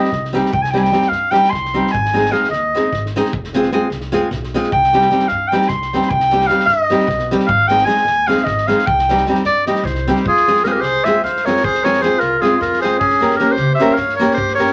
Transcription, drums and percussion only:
0.04 snare soft
0.12 kick medium
0.12 snare soft
0.25 snare soft
0.35 snare soft
0.45 snare soft
0.53 kick loud
0.64 snare soft
0.75 snare soft
0.85 snare soft
0.93 snare soft
1.02 snare soft
1.12 snare soft
1.34 snare soft
1.44 snare soft
1.53 kick medium
1.53 snare soft
1.65 snare soft
1.87 snare soft
1.95 kick medium
2.05 snare soft
2.17 snare soft
2.26 snare soft
2.34 snare soft
2.44 snare soft
2.52 snare soft
2.76 snare soft
2.92 kick medium
2.92 snare soft
3.06 snare soft
3.16 snare soft
3.25 snare soft
3.33 kick loud
3.44 snare soft
3.53 snare soft
3.63 snare soft
3.72 snare soft
3.91 snare soft
4.01 snare soft
4.13 snare soft
4.31 snare soft
4.44 snare soft
4.55 snare soft
4.63 snare soft
4.72 kick loud
4.84 snare soft
4.93 snare soft
5.01 snare soft
5.11 snare soft
5.19 snare soft
5.28 snare soft
5.52 snare soft
5.62 snare soft
5.68 kick medium
5.68 snare soft
5.82 snare soft
5.93 snare soft
6.02 snare soft
6.11 kick medium
6.20 snare soft
6.30 snare soft
6.41 snare soft
6.49 snare soft
6.60 snare soft
6.69 snare soft
6.90 snare soft
6.99 snare soft
7.08 kick medium
7.08 snare soft
7.19 snare soft
7.31 snare soft
7.40 snare soft
7.49 kick loud
7.69 snare soft
7.78 snare soft
7.89 snare soft
7.97 snare soft
8.07 snare soft
8.30 snare soft
8.37 snare soft
8.47 kick medium
8.47 snare soft
8.58 snare soft
8.69 snare soft
8.79 snare soft
8.87 kick loud
8.99 snare soft
9.09 snare soft
9.17 snare soft
9.26 snare soft
9.35 snare soft
9.44 snare soft
9.66 snare soft
9.75 snare soft
9.85 kick medium
9.85 snare soft
9.95 snare soft
10.07 snare soft
10.16 snare soft
10.26 kick loud
10.37 snare soft
10.47 snare soft
10.56 snare soft
10.64 snare soft
10.82 snare soft
11.05 snare soft
11.25 snare soft
11.37 snare soft
11.47 snare soft
11.56 snare soft
11.64 kick medium
11.75 snare soft
11.85 snare soft
11.93 snare soft
12.03 snare soft
12.20 snare soft
12.43 snare soft
12.61 snare soft
12.73 snare soft
12.83 snare soft
13.01 kick medium
13.10 snare soft
13.21 snare soft
13.30 snare soft
13.40 snare soft
13.56 snare soft
13.79 snare soft
13.97 snare soft
14.09 snare soft
14.20 snare soft
14.31 snare soft
14.38 kick medium
14.48 snare soft
14.59 snare soft
14.66 snare soft

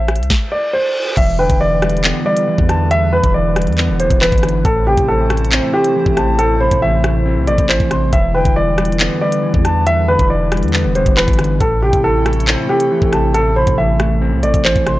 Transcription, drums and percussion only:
0.08 cross-stick loud
0.08 closed hi-hat medium
0.16 closed hi-hat medium
0.23 closed hi-hat medium
0.30 kick loud
0.30 snare medium
1.17 kick loud
1.17 closed hi-hat medium
1.17 crash loud
1.50 kick medium
1.50 closed hi-hat medium
1.82 cross-stick loud
1.82 closed hi-hat medium
1.90 closed hi-hat medium
1.97 closed hi-hat medium
2.04 clap loud
2.04 closed hi-hat medium
2.37 closed hi-hat medium
2.58 kick medium
2.69 cross-stick medium
2.69 closed hi-hat medium
2.91 closed hi-hat medium
3.24 kick medium
3.24 closed hi-hat medium
3.56 cross-stick medium
3.56 closed hi-hat medium
3.62 closed hi-hat medium
3.67 closed hi-hat medium
3.73 closed hi-hat soft
3.78 clap medium
4.00 closed hi-hat medium
4.10 kick loud
4.10 closed hi-hat medium
4.21 clap loud
4.32 kick medium
4.32 closed hi-hat medium
4.38 closed hi-hat medium
4.43 cross-stick medium
4.43 closed hi-hat medium
4.49 closed hi-hat medium
4.65 kick loud
4.65 closed hi-hat medium
4.97 kick medium
4.97 closed hi-hat medium
5.30 cross-stick medium
5.30 closed hi-hat medium
5.37 closed hi-hat medium
5.45 closed hi-hat medium
5.52 clap loud
5.52 closed hi-hat medium
5.84 closed hi-hat medium
6.06 kick medium
6.17 cross-stick medium
6.17 closed hi-hat medium
6.39 closed hi-hat medium
6.71 kick medium
6.71 closed hi-hat medium
7.04 cross-stick loud
7.04 closed hi-hat medium
7.47 closed hi-hat medium
7.58 kick loud
7.58 closed hi-hat medium
7.69 clap loud
7.80 kick medium
7.80 closed hi-hat soft
7.91 cross-stick medium
7.91 closed hi-hat medium
8.13 kick loud
8.13 closed hi-hat medium
8.45 kick medium
8.45 closed hi-hat medium
8.78 cross-stick loud
8.78 closed hi-hat medium
8.85 closed hi-hat medium
8.92 closed hi-hat medium
9.00 clap loud
9.00 closed hi-hat medium
9.32 closed hi-hat medium
9.54 kick medium
9.65 cross-stick medium
9.65 closed hi-hat medium
9.87 closed hi-hat medium
10.19 kick medium
10.19 closed hi-hat medium
10.52 cross-stick loud
10.52 closed hi-hat medium
10.57 closed hi-hat medium
10.63 closed hi-hat medium
10.68 closed hi-hat soft
10.74 clap medium
10.95 closed hi-hat medium
11.06 kick loud
11.06 closed hi-hat medium
11.17 clap loud
11.28 kick medium
11.28 closed hi-hat medium
11.33 closed hi-hat medium
11.39 cross-stick medium
11.39 closed hi-hat medium
11.44 closed hi-hat medium
11.60 kick loud
11.60 closed hi-hat medium
11.93 kick medium
11.93 closed hi-hat medium
12.26 cross-stick loud
12.26 closed hi-hat medium
12.33 closed hi-hat medium
12.40 closed hi-hat medium
12.47 clap loud
12.47 closed hi-hat medium
12.80 closed hi-hat medium
13.02 kick medium
13.13 cross-stick medium
13.13 closed hi-hat medium
13.34 closed hi-hat medium
13.67 kick medium
13.67 closed hi-hat medium
14.00 cross-stick loud
14.00 closed hi-hat medium
14.43 closed hi-hat medium
14.54 kick loud
14.54 closed hi-hat medium
14.65 clap loud
14.76 kick medium
14.76 closed hi-hat soft
14.87 cross-stick medium
14.87 closed hi-hat medium

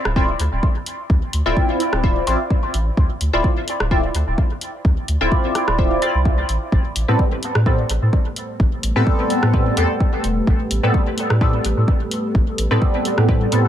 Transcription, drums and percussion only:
0.05 cross-stick medium
0.16 kick loud
0.40 closed hi-hat medium
0.63 kick loud
0.86 closed hi-hat medium
1.10 kick loud
1.33 closed hi-hat medium
1.57 kick loud
1.80 closed hi-hat medium
1.93 cross-stick medium
2.04 kick loud
2.27 closed hi-hat medium
2.50 kick loud
2.74 closed hi-hat medium
2.97 kick loud
3.21 closed hi-hat medium
3.44 kick loud
3.68 closed hi-hat medium
3.80 cross-stick medium
3.91 kick loud
4.15 closed hi-hat medium
4.38 kick loud
4.61 closed hi-hat medium
4.85 kick loud
5.08 closed hi-hat medium
5.32 kick loud
5.55 cross-stick medium
5.55 closed hi-hat medium
5.68 cross-stick medium
5.79 kick loud
6.02 closed hi-hat medium
6.25 kick loud
6.49 closed hi-hat medium
6.72 kick loud
6.96 closed hi-hat medium
7.19 kick loud
7.43 closed hi-hat medium
7.55 cross-stick medium
7.66 kick loud
7.90 closed hi-hat medium
8.13 kick loud
8.36 closed hi-hat medium
8.60 kick loud
8.83 closed hi-hat medium
9.07 kick loud
9.30 closed hi-hat medium
9.43 cross-stick medium
9.54 kick loud
9.77 closed hi-hat medium
10.00 kick loud
10.24 closed hi-hat medium
10.47 kick loud
10.71 closed hi-hat medium
10.94 kick loud
11.18 closed hi-hat medium
11.30 cross-stick medium
11.41 kick loud
11.65 closed hi-hat medium
11.88 kick loud
12.11 closed hi-hat medium
12.35 kick loud
12.58 closed hi-hat medium
12.82 kick loud
13.05 closed hi-hat medium
13.18 cross-stick medium
13.29 kick loud
13.52 closed hi-hat medium

